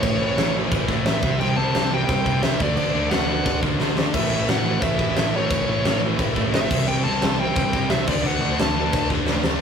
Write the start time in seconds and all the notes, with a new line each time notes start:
Already playing: C#5
0.02 A1 A2 E3 A3, kick, crash
0.20 A1 A2 E3 A3
0.37 A1 A2 E3 A3, snare, crash
0.55 A2 E3 A3
0.71 A1 A2 E3 A3, kick, crash
0.88 A1 A2 E3 A3, kick
1.05 A1 A2 E3 A3 E5, snare, crash
1.22 C2 C3 G3 C4, kick
1.40 C2 C3 G3 C4 G5, crash
1.56 C2 C3 G3 C4 A5
1.73 C2 C3 G3 C4, snare, crash
1.78 C3
1.91 C3 G3 C4 G5
2.09 C2 C3 G3 C4, kick, crash
2.25 C2 C3 G3 C4, kick
2.43 C2 C3 G3 C4 E5, snare, crash
2.60 D2 D3 A3 D4 D5, kick
2.77 D2 D3 A3 D4 D5, crash
2.95 D2 D3 A3 D4
3.10 D2 D3 A3 D4 F#5, snare, crash
3.29 D3 A3 D4
3.45 D2 D3 A3 D4, kick, crash
3.62 D2 D3 A3 D4, kick
3.79 D2 D3 A3 D4, snare
3.96 D3 A3 D4, snare
4.13 A1 A2 E3 A3 E5, kick, crash
4.30 A1 A2 E3 A3
4.47 A1 A2 E3 A3 F#5, snare, crash
4.66 A2 E3 A3
4.82 A1 A2 E3 A3 E5, kick, crash
4.99 A1 A2 E3 A3, kick
5.16 A1 A2 E3 A3 E5, snare, crash
5.32 A2 E3 A3 C#5
5.50 A1 A2 E3 A3, kick, crash
5.67 A1 A2 E3 A3
5.84 A1 A2 E3 A3, snare, crash
6.02 A2 E3 A3
6.18 A1 A2 E3 A3, kick, crash
6.35 A1 A2 E3 A3, kick
6.53 A1 A2 E3 A3 E5, snare, crash
6.70 C2 C3 G3 C4, kick, crash
6.87 C2 C3 G3 C4 G5, crash
7.04 C2 C3 G3 C4 A5
7.22 C2 C3 G3 C4, snare, crash
7.38 C3 G3 C4 G5
7.55 C2 C3 G3 C4, kick, crash
7.72 C2 C3 G3 C4, kick
7.89 C2 C3 G3 C4 E5, snare, crash
8.06 D2 D3 A3 D4 D5, kick, crash
8.10 A3
8.24 D2 D3 A3 D4 F#5, crash
8.40 D2 D3 A3 D4
8.58 D2 D3 A3 D4 A5, snare, crash
8.76 D3 A3 D4
8.93 D2 D3 A3 D4, kick, crash
9.10 D2 D3 A3 D4, kick
9.27 D2 D3 A3 D4, snare
9.44 D3 A3 D4, snare